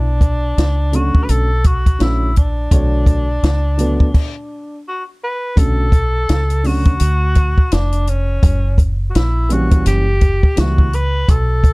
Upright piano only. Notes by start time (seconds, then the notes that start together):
0.92 D3 F#3 A3 C#4
1.99 D3 F#3 A3 C#4
2.71 D3 F#3 A3 C#5
3.77 D3 F#3 A3 B3
5.56 D3 F#3 A3 C#4
6.63 D3 F#3 A3 C#4
9.49 E3 G3 A#3 C#4
10.56 E3 G3 A#3 E4